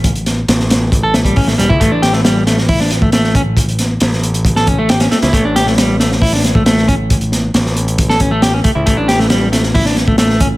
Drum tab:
HH |xxx-x-x-x-xxo-x-|x-x-x-x-o-x-x-x-|xxx-x-xxx-x-xxxx|x-x-x-x-o-x-x-x-|
SD |--o-ooo---o--oo-|--ooo-oo-oo-oo--|--o-oo---o--oooo|--ooo-oo-oo-oo--|
BD |o-------o--oo--o|o-------o--o--o-|o-------o-o-----|o-------o--o--o-|

HH |xxx-x-xxx-x-x-x-|x-x-x-x-o-x-x-x-|
SD |--o-oo---o--o---|--ooo-oo-oo-oo--|
BD |o-------o-o---o-|o-------o--o--o-|